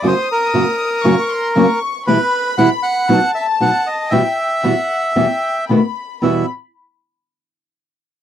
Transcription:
0.02 F#2 C#3 F#3 A#3 C#4 F#4 D#6
0.07 C5
0.32 A#4
0.54 F#2 C#3 F#3 A#3 C#4 F#4
1.04 F#2 C#3 F#3 A#3 C#4 F#4 C#6
1.31 C6
1.55 F#2 C#3 F#3 A#3 C#4 F#4 C#6
2.07 B2 E3 G3 B3 E4 B4 B5
2.58 B2 E3 G3 B3 E4 F#5
2.83 F#5
3.09 B2 F#3 B3 D#4 F#4 A5
3.35 E5
3.60 B2 F#3 B3 D#4 F#4 F#5
3.87 D#5
4.11 E2 B2 E3 G3 B3 F#4 E5 G5
4.63 E2 B2 E3 G3 B3 F#4 F#5
5.13 E2 B2 E3 G3 B3 G5
5.17 F#4
5.69 B2 D#3 A3 B3 F#4 B5
6.21 E2 B2 E3 G3 B3 F#4 E5 B5

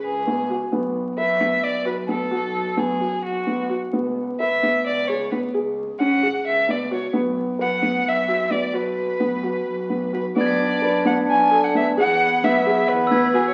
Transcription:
Already playing: G#4
0.05 C#2 G#4
0.27 B3
0.50 F#4
0.72 B1 B3
1.18 F#2 B4 E5
1.40 B3
1.64 B1 D5
1.85 F#4 B4
2.08 B3 A4
2.31 B1 F#4
2.77 F#2 B3 G#4
3.00 F#4
3.24 B1 F#4
3.47 B3
3.70 F#4
3.93 C#2 B3
4.40 G#1 B4 E5
4.63 B3
4.86 C#2 D5
5.08 G#4 C#5
5.31 B3 B4
5.54 C#2 G#4
6.00 G#1 C#4 F#5
6.23 G#4
6.46 C#2 E5
6.68 B3 D5
6.91 F#4 C#5
7.13 B1 B3
7.59 F#2 B4 F#5
7.82 B3
8.05 B1 E5
8.28 F#4
8.50 B3 D5
8.73 B1 F#4 B4
9.20 F#2 B3
9.43 F#4
9.67 B1
9.90 B3
10.13 F#4 B4
10.36 B1 B3 D4 D5
10.41 G#6
10.46 B6
10.82 F#2 B4
11.05 B3 F#5
11.29 B1 G#5
11.51 A4
11.64 F#5
11.75 B3 E5
11.97 E2 B3 G#4 F#5
12.43 B1 B3 E5
12.66 G#4
12.89 E2 B4
13.07 B3 E6
13.12 G#6
13.17 B6
13.34 F#4 G#4
13.49 C#5

